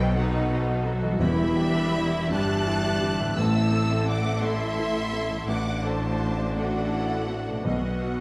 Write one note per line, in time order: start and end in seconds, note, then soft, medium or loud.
0.00 1.16 B1 medium
0.00 1.20 B1 medium
0.00 0.12 B2 loud
0.00 1.14 B2 medium
0.00 1.20 B2 medium
0.00 0.12 F#3 medium
0.00 1.16 F#3 medium
0.00 1.19 D#4 medium
0.00 0.50 F#4 medium
0.00 0.89 A4 medium
0.00 1.16 A4 medium
0.00 0.16 B4 medium
0.00 1.22 C5 medium
0.00 0.33 D#5 medium
0.00 1.21 D#5 medium
0.00 0.16 G5 loud
0.16 0.43 F#3 medium
0.16 0.49 D#4 medium
0.16 0.84 B4 medium
0.16 0.85 F#5 medium
0.33 0.61 D#5 medium
0.50 0.84 D#4 medium
0.50 0.78 F#4 medium
0.67 0.95 D#5 medium
0.85 1.13 F#3 medium
0.85 1.20 F#4 medium
1.02 3.31 E3 medium
1.02 1.20 D#5 medium
1.07 3.34 G3 medium
1.11 3.27 E4 medium
1.16 2.29 E1 medium
1.16 2.27 E2 loud
1.16 3.32 E5 medium
1.20 2.29 E2 medium
1.20 3.34 E2 medium
1.20 1.57 E4 medium
1.20 3.34 G4 medium
1.20 2.28 E5 loud
1.20 2.27 B5 loud
1.38 1.68 E5 medium
1.57 1.95 D4 medium
1.57 1.87 G4 medium
1.75 2.05 E5 medium
1.94 2.31 E4 loud
1.94 2.13 D5 medium
2.13 2.42 E5 medium
2.30 3.37 G1 medium
2.30 3.38 G2 loud
2.30 2.60 G3 medium
2.30 3.38 D4 medium
2.30 3.38 A5 loud
2.30 3.38 F#6 loud
2.49 2.77 E5 medium
2.67 2.95 E4 medium
2.84 3.13 E5 medium
3.02 3.30 G3 medium
3.19 5.30 A2 medium
3.19 3.37 E5 medium
3.24 5.35 A3 medium
3.29 5.46 E4 medium
3.33 5.44 A1 medium
3.33 5.49 E5 medium
3.37 5.44 A2 medium
3.37 4.41 C4 medium
3.37 5.44 A4 medium
3.37 4.07 A5 loud
3.37 4.08 E6 loud
3.55 3.83 E5 medium
3.72 4.01 A4 medium
3.90 4.18 E5 medium
4.08 4.25 D5 medium
4.08 4.43 F#5 loud
4.08 4.42 D6 loud
4.25 4.53 E5 medium
4.43 4.70 A3 medium
4.43 5.46 E4 medium
4.43 5.49 E5 loud
4.43 5.48 C6 loud
4.60 4.88 E5 medium
4.78 5.06 E4 medium
4.96 5.24 E5 medium
5.13 5.41 A3 medium
5.31 7.60 A2 medium
5.31 5.48 E5 medium
5.36 7.62 A3 medium
5.40 8.20 F#5 medium
5.45 7.62 A2 medium
5.45 7.67 D5 medium
5.49 7.62 A1 medium
5.49 7.66 D4 medium
5.49 6.54 F#4 medium
5.49 5.83 F#5 loud
5.49 5.83 D6 loud
5.67 5.95 D5 medium
5.84 6.12 A4 medium
5.84 6.56 C5 loud
5.84 6.56 A5 loud
6.02 6.30 D5 medium
6.20 6.38 C5 soft
6.38 6.67 D5 medium
6.56 6.85 A3 medium
6.56 6.92 F#4 medium
6.56 7.66 A4 loud
6.56 7.66 F#5 loud
6.74 7.03 D5 medium
6.92 7.29 E4 medium
6.92 7.21 F#4 medium
7.10 7.39 D5 medium
7.28 7.58 A3 medium
7.28 7.66 F#4 medium
7.47 8.20 B2 medium
7.47 7.65 D5 medium
7.62 8.20 B1 medium
7.62 8.20 B2 medium
7.62 8.20 B4 soft
7.62 8.20 D#5 loud
7.66 8.20 B2 medium
7.66 8.20 B3 medium
7.66 8.20 F#4 medium
7.66 8.20 F#5 medium
7.84 8.14 B4 soft
8.03 8.20 F#4 medium